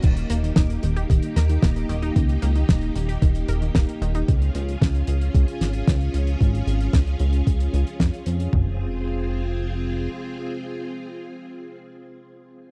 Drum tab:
CC |x---------------|----------------|----------------|----------------|
HH |xxxxxxxxxxxxxxxx|xxxxxxxxxxxxxxxx|xxxxxxxxxxxxxxxx|xxxxxxxxxxxxxxxx|
SD |----o-----o-o---|----o-------o---|----o-----o-o---|----o-------o---|
FT |----------------|----------------|----------------|----------------|
BD |o---o---o---o---|o---o---o---o---|o---o---o---o---|o---o---o---o---|

CC |----------------|----------------|
HH |----------------|----------------|
SD |----------------|----------------|
FT |o---------------|----------------|
BD |o---------------|----------------|